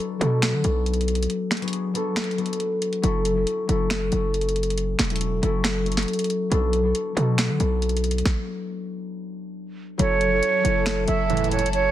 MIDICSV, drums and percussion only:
0, 0, Header, 1, 2, 480
1, 0, Start_track
1, 0, Key_signature, 3, "minor"
1, 0, Tempo, 434783
1, 1433, Time_signature, 4, 2, 24, 8
1, 13154, End_track
2, 0, Start_track
2, 0, Title_t, "Drums"
2, 235, Note_on_c, 9, 42, 73
2, 345, Note_off_c, 9, 42, 0
2, 467, Note_on_c, 9, 26, 93
2, 472, Note_on_c, 9, 42, 81
2, 473, Note_on_c, 9, 38, 113
2, 577, Note_off_c, 9, 26, 0
2, 582, Note_off_c, 9, 42, 0
2, 583, Note_off_c, 9, 38, 0
2, 708, Note_on_c, 9, 42, 65
2, 818, Note_off_c, 9, 42, 0
2, 953, Note_on_c, 9, 42, 40
2, 1033, Note_off_c, 9, 42, 0
2, 1033, Note_on_c, 9, 42, 45
2, 1113, Note_off_c, 9, 42, 0
2, 1113, Note_on_c, 9, 42, 52
2, 1193, Note_off_c, 9, 42, 0
2, 1193, Note_on_c, 9, 42, 58
2, 1273, Note_off_c, 9, 42, 0
2, 1273, Note_on_c, 9, 42, 64
2, 1353, Note_off_c, 9, 42, 0
2, 1353, Note_on_c, 9, 42, 69
2, 1433, Note_off_c, 9, 42, 0
2, 1433, Note_on_c, 9, 42, 74
2, 1543, Note_off_c, 9, 42, 0
2, 1665, Note_on_c, 9, 26, 68
2, 1672, Note_on_c, 9, 38, 85
2, 1672, Note_on_c, 9, 42, 57
2, 1733, Note_off_c, 9, 42, 0
2, 1733, Note_on_c, 9, 42, 57
2, 1776, Note_off_c, 9, 26, 0
2, 1782, Note_off_c, 9, 38, 0
2, 1792, Note_off_c, 9, 42, 0
2, 1792, Note_on_c, 9, 42, 57
2, 1852, Note_off_c, 9, 42, 0
2, 1852, Note_on_c, 9, 42, 58
2, 1909, Note_off_c, 9, 42, 0
2, 1909, Note_on_c, 9, 42, 74
2, 2020, Note_off_c, 9, 42, 0
2, 2154, Note_on_c, 9, 42, 73
2, 2264, Note_off_c, 9, 42, 0
2, 2386, Note_on_c, 9, 26, 93
2, 2392, Note_on_c, 9, 38, 110
2, 2392, Note_on_c, 9, 42, 81
2, 2473, Note_off_c, 9, 42, 0
2, 2473, Note_on_c, 9, 42, 65
2, 2496, Note_off_c, 9, 26, 0
2, 2503, Note_off_c, 9, 38, 0
2, 2553, Note_off_c, 9, 42, 0
2, 2553, Note_on_c, 9, 42, 46
2, 2632, Note_off_c, 9, 42, 0
2, 2632, Note_on_c, 9, 42, 40
2, 2713, Note_off_c, 9, 42, 0
2, 2713, Note_on_c, 9, 42, 54
2, 2793, Note_off_c, 9, 42, 0
2, 2793, Note_on_c, 9, 42, 69
2, 2870, Note_off_c, 9, 42, 0
2, 2870, Note_on_c, 9, 42, 66
2, 2981, Note_off_c, 9, 42, 0
2, 3112, Note_on_c, 9, 42, 70
2, 3222, Note_off_c, 9, 42, 0
2, 3231, Note_on_c, 9, 42, 39
2, 3342, Note_off_c, 9, 42, 0
2, 3351, Note_on_c, 9, 42, 75
2, 3462, Note_off_c, 9, 42, 0
2, 3590, Note_on_c, 9, 42, 68
2, 3700, Note_off_c, 9, 42, 0
2, 3830, Note_on_c, 9, 42, 75
2, 3940, Note_off_c, 9, 42, 0
2, 4074, Note_on_c, 9, 42, 72
2, 4184, Note_off_c, 9, 42, 0
2, 4306, Note_on_c, 9, 26, 90
2, 4312, Note_on_c, 9, 42, 75
2, 4313, Note_on_c, 9, 38, 109
2, 4417, Note_off_c, 9, 26, 0
2, 4422, Note_off_c, 9, 42, 0
2, 4423, Note_off_c, 9, 38, 0
2, 4547, Note_on_c, 9, 42, 67
2, 4657, Note_off_c, 9, 42, 0
2, 4792, Note_on_c, 9, 42, 41
2, 4873, Note_off_c, 9, 42, 0
2, 4873, Note_on_c, 9, 42, 45
2, 4953, Note_off_c, 9, 42, 0
2, 4953, Note_on_c, 9, 42, 52
2, 5033, Note_off_c, 9, 42, 0
2, 5033, Note_on_c, 9, 42, 58
2, 5113, Note_off_c, 9, 42, 0
2, 5113, Note_on_c, 9, 42, 64
2, 5193, Note_off_c, 9, 42, 0
2, 5193, Note_on_c, 9, 42, 68
2, 5272, Note_off_c, 9, 42, 0
2, 5272, Note_on_c, 9, 42, 78
2, 5383, Note_off_c, 9, 42, 0
2, 5506, Note_on_c, 9, 26, 68
2, 5513, Note_on_c, 9, 38, 88
2, 5513, Note_on_c, 9, 42, 41
2, 5573, Note_off_c, 9, 42, 0
2, 5573, Note_on_c, 9, 42, 50
2, 5617, Note_off_c, 9, 26, 0
2, 5623, Note_off_c, 9, 38, 0
2, 5633, Note_off_c, 9, 42, 0
2, 5633, Note_on_c, 9, 42, 59
2, 5693, Note_off_c, 9, 42, 0
2, 5693, Note_on_c, 9, 42, 70
2, 5750, Note_off_c, 9, 42, 0
2, 5750, Note_on_c, 9, 42, 75
2, 5861, Note_off_c, 9, 42, 0
2, 5994, Note_on_c, 9, 42, 74
2, 6104, Note_off_c, 9, 42, 0
2, 6226, Note_on_c, 9, 26, 89
2, 6231, Note_on_c, 9, 42, 80
2, 6232, Note_on_c, 9, 38, 115
2, 6336, Note_off_c, 9, 26, 0
2, 6342, Note_off_c, 9, 42, 0
2, 6343, Note_off_c, 9, 38, 0
2, 6472, Note_on_c, 9, 42, 41
2, 6532, Note_off_c, 9, 42, 0
2, 6532, Note_on_c, 9, 42, 51
2, 6593, Note_on_c, 9, 38, 66
2, 6594, Note_off_c, 9, 42, 0
2, 6594, Note_on_c, 9, 42, 58
2, 6653, Note_off_c, 9, 42, 0
2, 6653, Note_on_c, 9, 42, 69
2, 6704, Note_off_c, 9, 38, 0
2, 6713, Note_off_c, 9, 42, 0
2, 6713, Note_on_c, 9, 42, 42
2, 6772, Note_off_c, 9, 42, 0
2, 6772, Note_on_c, 9, 42, 50
2, 6833, Note_off_c, 9, 42, 0
2, 6833, Note_on_c, 9, 42, 60
2, 6893, Note_off_c, 9, 42, 0
2, 6893, Note_on_c, 9, 42, 66
2, 6955, Note_off_c, 9, 42, 0
2, 6955, Note_on_c, 9, 42, 69
2, 7066, Note_off_c, 9, 42, 0
2, 7194, Note_on_c, 9, 42, 77
2, 7304, Note_off_c, 9, 42, 0
2, 7431, Note_on_c, 9, 42, 66
2, 7542, Note_off_c, 9, 42, 0
2, 7671, Note_on_c, 9, 42, 74
2, 7782, Note_off_c, 9, 42, 0
2, 7917, Note_on_c, 9, 42, 76
2, 8027, Note_off_c, 9, 42, 0
2, 8148, Note_on_c, 9, 26, 92
2, 8154, Note_on_c, 9, 42, 79
2, 8155, Note_on_c, 9, 38, 113
2, 8258, Note_off_c, 9, 26, 0
2, 8264, Note_off_c, 9, 42, 0
2, 8265, Note_off_c, 9, 38, 0
2, 8390, Note_on_c, 9, 42, 66
2, 8501, Note_off_c, 9, 42, 0
2, 8635, Note_on_c, 9, 42, 41
2, 8714, Note_off_c, 9, 42, 0
2, 8714, Note_on_c, 9, 42, 46
2, 8795, Note_off_c, 9, 42, 0
2, 8795, Note_on_c, 9, 42, 50
2, 8875, Note_off_c, 9, 42, 0
2, 8875, Note_on_c, 9, 42, 57
2, 8954, Note_off_c, 9, 42, 0
2, 8954, Note_on_c, 9, 42, 66
2, 9035, Note_off_c, 9, 42, 0
2, 9035, Note_on_c, 9, 42, 70
2, 9114, Note_on_c, 9, 36, 111
2, 9114, Note_on_c, 9, 38, 95
2, 9145, Note_off_c, 9, 42, 0
2, 9224, Note_off_c, 9, 36, 0
2, 9224, Note_off_c, 9, 38, 0
2, 11033, Note_on_c, 9, 42, 81
2, 11143, Note_off_c, 9, 42, 0
2, 11271, Note_on_c, 9, 42, 70
2, 11381, Note_off_c, 9, 42, 0
2, 11511, Note_on_c, 9, 42, 76
2, 11621, Note_off_c, 9, 42, 0
2, 11756, Note_on_c, 9, 42, 73
2, 11866, Note_off_c, 9, 42, 0
2, 11987, Note_on_c, 9, 26, 94
2, 11993, Note_on_c, 9, 42, 78
2, 11994, Note_on_c, 9, 38, 115
2, 12098, Note_off_c, 9, 26, 0
2, 12103, Note_off_c, 9, 42, 0
2, 12104, Note_off_c, 9, 38, 0
2, 12228, Note_on_c, 9, 42, 68
2, 12338, Note_off_c, 9, 42, 0
2, 12472, Note_on_c, 9, 42, 43
2, 12553, Note_off_c, 9, 42, 0
2, 12553, Note_on_c, 9, 42, 47
2, 12632, Note_off_c, 9, 42, 0
2, 12632, Note_on_c, 9, 42, 52
2, 12713, Note_off_c, 9, 42, 0
2, 12713, Note_on_c, 9, 42, 58
2, 12792, Note_off_c, 9, 42, 0
2, 12792, Note_on_c, 9, 42, 66
2, 12872, Note_off_c, 9, 42, 0
2, 12872, Note_on_c, 9, 42, 71
2, 12952, Note_off_c, 9, 42, 0
2, 12952, Note_on_c, 9, 42, 80
2, 13063, Note_off_c, 9, 42, 0
2, 13154, End_track
0, 0, End_of_file